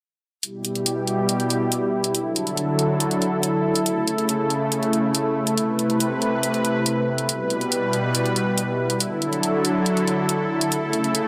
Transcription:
0.43 B2 G3 E4 G4, closed hi-hat
0.65 closed hi-hat
0.75 closed hi-hat
0.86 closed hi-hat
1.07 closed hi-hat
1.29 closed hi-hat
1.40 closed hi-hat
1.50 closed hi-hat
1.72 closed hi-hat
2.04 closed hi-hat
2.14 D3 F#3 A4, closed hi-hat
2.36 closed hi-hat
2.47 closed hi-hat
2.57 closed hi-hat
2.79 closed hi-hat
3.00 closed hi-hat
3.11 closed hi-hat
3.22 closed hi-hat
3.43 closed hi-hat
3.75 closed hi-hat
3.86 C#3 A3, closed hi-hat
4.08 closed hi-hat
4.18 closed hi-hat
4.29 closed hi-hat
4.50 closed hi-hat
4.72 closed hi-hat
4.83 closed hi-hat
4.93 closed hi-hat
5.15 closed hi-hat
5.47 closed hi-hat
5.57 C3 B4, closed hi-hat
5.79 closed hi-hat
5.90 closed hi-hat
6.00 closed hi-hat
6.22 closed hi-hat
6.43 closed hi-hat
6.54 closed hi-hat
6.65 closed hi-hat
6.86 closed hi-hat
7.18 closed hi-hat
7.29 B2 G3 B4, closed hi-hat
7.50 closed hi-hat
7.61 closed hi-hat
7.72 closed hi-hat
7.93 closed hi-hat
8.15 closed hi-hat
8.26 closed hi-hat
8.36 closed hi-hat
8.58 closed hi-hat
8.90 closed hi-hat
9.00 D3 F#3 E4 A4, closed hi-hat
9.22 closed hi-hat
9.33 closed hi-hat
9.43 closed hi-hat
9.65 closed hi-hat
9.86 closed hi-hat
9.97 closed hi-hat
10.08 closed hi-hat
10.29 closed hi-hat
10.61 closed hi-hat
10.72 C#3 A3, closed hi-hat
10.93 closed hi-hat
11.04 closed hi-hat
11.15 closed hi-hat

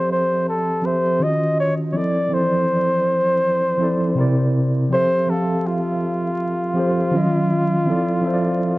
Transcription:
Already playing: F3 C4 G4 A4 C5 C#5 D5 E5
0.12 C5
0.49 A4
0.82 F3 C4 G4
0.86 A4 C5 E5
1.19 D#3 C#4 F4
1.23 F#4 D#5
1.60 C#5
1.92 F3 C4 E4 C#5
1.97 A4 D5
2.29 E3 C4 E4
2.33 F3 A4 C5 D5
3.78 F3 C4 E4
3.82 A4 D5
4.15 C3 C4 E4
4.19 A#4 D5
4.89 F3 C4 G4
4.93 A4 C5 E5
5.27 F3 C4 G4 A4
5.31 A4 F5
5.67 F4
6.74 F3 C4 G4
6.78 A4 C5
7.12 D#3 C#4 F4
7.16 F#3 D#5
7.86 F3 C4 E4
7.90 A4 D5
8.21 F3 C4 E5
8.25 A4 C5
8.33 D5

